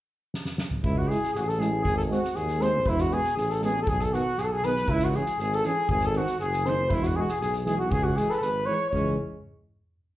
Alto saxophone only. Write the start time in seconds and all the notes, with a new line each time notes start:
0.84 E4
0.98 F#4
1.08 G#4
1.33 G#4
1.37 F#4
1.41 G#4
1.49 A4
1.59 G#4
1.83 G#4
1.97 A4
2.14 F#4
2.37 G#4
2.62 C5
2.89 E4
3.01 F#4
3.15 G#4
3.40 G#4
3.54 A4
3.65 G#4
3.83 A4
3.90 G#4
4.04 A4
4.15 F#4
4.41 G#4 A4
4.56 G#4
4.65 B4
4.93 E4
5.05 F#4
5.15 G#4
5.40 G#4
5.53 A4
5.64 G#4
5.91 G#4
6.05 A4
6.18 F#4
6.44 G#4
6.69 C5
6.94 E4
7.07 F#4
7.17 F#4 G#4
7.31 G#4
7.43 G#4
7.69 G#4
7.80 F#4
7.93 G#4
8.03 F#4
8.19 G#4
8.34 B4
8.40 A4
8.48 B4
8.74 C#5
8.94 C#4